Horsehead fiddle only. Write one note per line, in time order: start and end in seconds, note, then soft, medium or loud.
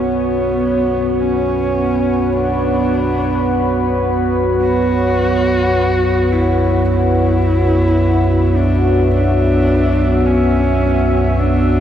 0.07 1.22 B3 medium
1.20 2.34 C#4 medium
2.33 4.03 D4 medium
4.61 6.34 F#4 loud
6.32 6.87 E4 medium
6.88 8.58 E4 medium
8.56 9.13 D4 medium
9.15 10.27 D4 medium
10.26 11.41 C#4 medium
11.39 11.80 D4 medium